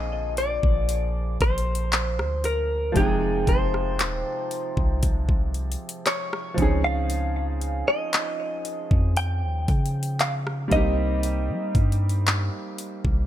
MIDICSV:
0, 0, Header, 1, 5, 480
1, 0, Start_track
1, 0, Key_signature, -4, "minor"
1, 0, Tempo, 1034483
1, 1373, Time_signature, 4, 2, 24, 8
1, 6156, End_track
2, 0, Start_track
2, 0, Title_t, "Clean electric guitar"
2, 0, Program_c, 0, 27
2, 0, Note_on_c, 0, 75, 110
2, 175, Note_off_c, 0, 75, 0
2, 177, Note_on_c, 0, 74, 97
2, 636, Note_off_c, 0, 74, 0
2, 658, Note_on_c, 0, 72, 107
2, 1138, Note_on_c, 0, 70, 92
2, 1149, Note_off_c, 0, 72, 0
2, 1376, Note_off_c, 0, 70, 0
2, 1378, Note_on_c, 0, 68, 103
2, 1618, Note_on_c, 0, 72, 86
2, 1622, Note_off_c, 0, 68, 0
2, 2557, Note_off_c, 0, 72, 0
2, 2816, Note_on_c, 0, 73, 88
2, 3155, Note_off_c, 0, 73, 0
2, 3176, Note_on_c, 0, 77, 105
2, 3654, Note_off_c, 0, 77, 0
2, 3656, Note_on_c, 0, 75, 100
2, 4236, Note_off_c, 0, 75, 0
2, 4256, Note_on_c, 0, 79, 110
2, 4734, Note_off_c, 0, 79, 0
2, 4736, Note_on_c, 0, 77, 105
2, 4800, Note_off_c, 0, 77, 0
2, 4976, Note_on_c, 0, 75, 101
2, 6156, Note_off_c, 0, 75, 0
2, 6156, End_track
3, 0, Start_track
3, 0, Title_t, "Grand piano"
3, 0, Program_c, 1, 0
3, 0, Control_c, 1, 64, 127
3, 0, Note_on_c, 1, 50, 67
3, 0, Note_on_c, 1, 53, 70
3, 0, Note_on_c, 1, 58, 64
3, 0, Note_on_c, 1, 60, 63
3, 0, Note_on_c, 1, 68, 76
3, 1345, Note_off_c, 1, 53, 0
3, 1350, Note_off_c, 1, 58, 0
3, 1354, Note_off_c, 1, 60, 0
3, 1355, Note_on_c, 1, 53, 72
3, 1359, Note_off_c, 1, 50, 0
3, 1364, Note_off_c, 1, 68, 0
3, 1364, Note_on_c, 1, 56, 61
3, 1374, Note_on_c, 1, 48, 63
3, 1378, Control_c, 1, 64, 0
3, 1382, Note_on_c, 1, 63, 66
3, 1391, Note_on_c, 1, 79, 77
3, 1469, Control_c, 1, 64, 127
3, 3025, Note_off_c, 1, 53, 0
3, 3030, Note_off_c, 1, 56, 0
3, 3034, Note_off_c, 1, 48, 0
3, 3036, Note_on_c, 1, 53, 69
3, 3039, Note_off_c, 1, 63, 0
3, 3043, Note_off_c, 1, 79, 0
3, 3045, Note_on_c, 1, 60, 65
3, 3054, Note_on_c, 1, 61, 67
3, 3058, Control_c, 1, 64, 0
3, 3063, Note_on_c, 1, 63, 61
3, 3073, Note_on_c, 1, 68, 77
3, 3147, Control_c, 1, 64, 127
3, 4945, Note_off_c, 1, 53, 0
3, 4950, Note_off_c, 1, 60, 0
3, 4955, Note_off_c, 1, 61, 0
3, 4955, Note_on_c, 1, 55, 72
3, 4959, Note_off_c, 1, 63, 0
3, 4964, Note_off_c, 1, 68, 0
3, 4965, Note_on_c, 1, 58, 64
3, 4974, Note_on_c, 1, 60, 65
3, 4979, Control_c, 1, 64, 0
3, 4983, Note_on_c, 1, 63, 61
3, 4992, Note_on_c, 1, 67, 79
3, 5056, Control_c, 1, 64, 127
3, 6156, Note_off_c, 1, 55, 0
3, 6156, Note_off_c, 1, 58, 0
3, 6156, Note_off_c, 1, 60, 0
3, 6156, Note_off_c, 1, 63, 0
3, 6156, Note_off_c, 1, 67, 0
3, 6156, End_track
4, 0, Start_track
4, 0, Title_t, "808-style bass"
4, 0, Program_c, 2, 38
4, 0, Note_on_c, 2, 34, 112
4, 274, Note_off_c, 2, 34, 0
4, 294, Note_on_c, 2, 34, 108
4, 639, Note_off_c, 2, 34, 0
4, 653, Note_on_c, 2, 34, 109
4, 1012, Note_on_c, 2, 38, 109
4, 1019, Note_off_c, 2, 34, 0
4, 1354, Note_off_c, 2, 38, 0
4, 1372, Note_on_c, 2, 29, 112
4, 1603, Note_off_c, 2, 29, 0
4, 1611, Note_on_c, 2, 29, 110
4, 1853, Note_on_c, 2, 27, 103
4, 1860, Note_off_c, 2, 29, 0
4, 1967, Note_off_c, 2, 27, 0
4, 2214, Note_on_c, 2, 36, 101
4, 2674, Note_off_c, 2, 36, 0
4, 3053, Note_on_c, 2, 37, 112
4, 3634, Note_off_c, 2, 37, 0
4, 4134, Note_on_c, 2, 41, 115
4, 4373, Note_on_c, 2, 39, 101
4, 4380, Note_off_c, 2, 41, 0
4, 4487, Note_off_c, 2, 39, 0
4, 4493, Note_on_c, 2, 49, 105
4, 4954, Note_off_c, 2, 49, 0
4, 4973, Note_on_c, 2, 36, 115
4, 5332, Note_on_c, 2, 55, 95
4, 5339, Note_off_c, 2, 36, 0
4, 5446, Note_off_c, 2, 55, 0
4, 5452, Note_on_c, 2, 43, 109
4, 5798, Note_off_c, 2, 43, 0
4, 6053, Note_on_c, 2, 36, 103
4, 6156, Note_off_c, 2, 36, 0
4, 6156, End_track
5, 0, Start_track
5, 0, Title_t, "Drums"
5, 172, Note_on_c, 9, 42, 65
5, 219, Note_off_c, 9, 42, 0
5, 294, Note_on_c, 9, 36, 103
5, 340, Note_off_c, 9, 36, 0
5, 412, Note_on_c, 9, 42, 80
5, 458, Note_off_c, 9, 42, 0
5, 652, Note_on_c, 9, 42, 45
5, 653, Note_on_c, 9, 36, 90
5, 699, Note_off_c, 9, 36, 0
5, 699, Note_off_c, 9, 42, 0
5, 732, Note_on_c, 9, 42, 60
5, 779, Note_off_c, 9, 42, 0
5, 812, Note_on_c, 9, 42, 75
5, 859, Note_off_c, 9, 42, 0
5, 893, Note_on_c, 9, 42, 67
5, 894, Note_on_c, 9, 39, 121
5, 939, Note_off_c, 9, 42, 0
5, 940, Note_off_c, 9, 39, 0
5, 1017, Note_on_c, 9, 37, 100
5, 1064, Note_off_c, 9, 37, 0
5, 1132, Note_on_c, 9, 42, 65
5, 1179, Note_off_c, 9, 42, 0
5, 1372, Note_on_c, 9, 36, 101
5, 1372, Note_on_c, 9, 42, 70
5, 1418, Note_off_c, 9, 36, 0
5, 1418, Note_off_c, 9, 42, 0
5, 1611, Note_on_c, 9, 36, 97
5, 1612, Note_on_c, 9, 42, 51
5, 1658, Note_off_c, 9, 36, 0
5, 1659, Note_off_c, 9, 42, 0
5, 1736, Note_on_c, 9, 37, 70
5, 1783, Note_off_c, 9, 37, 0
5, 1853, Note_on_c, 9, 42, 72
5, 1856, Note_on_c, 9, 39, 119
5, 1899, Note_off_c, 9, 42, 0
5, 1902, Note_off_c, 9, 39, 0
5, 2093, Note_on_c, 9, 42, 63
5, 2139, Note_off_c, 9, 42, 0
5, 2214, Note_on_c, 9, 36, 111
5, 2260, Note_off_c, 9, 36, 0
5, 2332, Note_on_c, 9, 42, 84
5, 2333, Note_on_c, 9, 36, 93
5, 2379, Note_off_c, 9, 42, 0
5, 2380, Note_off_c, 9, 36, 0
5, 2453, Note_on_c, 9, 36, 98
5, 2499, Note_off_c, 9, 36, 0
5, 2572, Note_on_c, 9, 42, 44
5, 2619, Note_off_c, 9, 42, 0
5, 2652, Note_on_c, 9, 42, 61
5, 2699, Note_off_c, 9, 42, 0
5, 2732, Note_on_c, 9, 42, 75
5, 2779, Note_off_c, 9, 42, 0
5, 2813, Note_on_c, 9, 39, 118
5, 2813, Note_on_c, 9, 42, 65
5, 2859, Note_off_c, 9, 42, 0
5, 2860, Note_off_c, 9, 39, 0
5, 2937, Note_on_c, 9, 37, 101
5, 2984, Note_off_c, 9, 37, 0
5, 3053, Note_on_c, 9, 36, 112
5, 3053, Note_on_c, 9, 42, 64
5, 3099, Note_off_c, 9, 36, 0
5, 3099, Note_off_c, 9, 42, 0
5, 3293, Note_on_c, 9, 42, 72
5, 3339, Note_off_c, 9, 42, 0
5, 3533, Note_on_c, 9, 42, 57
5, 3580, Note_off_c, 9, 42, 0
5, 3656, Note_on_c, 9, 37, 71
5, 3703, Note_off_c, 9, 37, 0
5, 3772, Note_on_c, 9, 42, 77
5, 3775, Note_on_c, 9, 39, 116
5, 3819, Note_off_c, 9, 42, 0
5, 3822, Note_off_c, 9, 39, 0
5, 4013, Note_on_c, 9, 42, 63
5, 4060, Note_off_c, 9, 42, 0
5, 4134, Note_on_c, 9, 36, 109
5, 4181, Note_off_c, 9, 36, 0
5, 4253, Note_on_c, 9, 42, 82
5, 4299, Note_off_c, 9, 42, 0
5, 4492, Note_on_c, 9, 42, 46
5, 4493, Note_on_c, 9, 36, 99
5, 4539, Note_off_c, 9, 36, 0
5, 4539, Note_off_c, 9, 42, 0
5, 4573, Note_on_c, 9, 42, 62
5, 4620, Note_off_c, 9, 42, 0
5, 4653, Note_on_c, 9, 42, 75
5, 4699, Note_off_c, 9, 42, 0
5, 4733, Note_on_c, 9, 39, 127
5, 4733, Note_on_c, 9, 42, 65
5, 4779, Note_off_c, 9, 42, 0
5, 4780, Note_off_c, 9, 39, 0
5, 4857, Note_on_c, 9, 37, 100
5, 4903, Note_off_c, 9, 37, 0
5, 4972, Note_on_c, 9, 36, 112
5, 4972, Note_on_c, 9, 42, 62
5, 5018, Note_off_c, 9, 42, 0
5, 5019, Note_off_c, 9, 36, 0
5, 5212, Note_on_c, 9, 42, 73
5, 5259, Note_off_c, 9, 42, 0
5, 5451, Note_on_c, 9, 36, 95
5, 5451, Note_on_c, 9, 42, 47
5, 5498, Note_off_c, 9, 36, 0
5, 5498, Note_off_c, 9, 42, 0
5, 5532, Note_on_c, 9, 42, 47
5, 5578, Note_off_c, 9, 42, 0
5, 5612, Note_on_c, 9, 42, 48
5, 5658, Note_off_c, 9, 42, 0
5, 5692, Note_on_c, 9, 42, 74
5, 5694, Note_on_c, 9, 39, 118
5, 5738, Note_off_c, 9, 42, 0
5, 5741, Note_off_c, 9, 39, 0
5, 5932, Note_on_c, 9, 42, 64
5, 5978, Note_off_c, 9, 42, 0
5, 6053, Note_on_c, 9, 36, 106
5, 6100, Note_off_c, 9, 36, 0
5, 6156, End_track
0, 0, End_of_file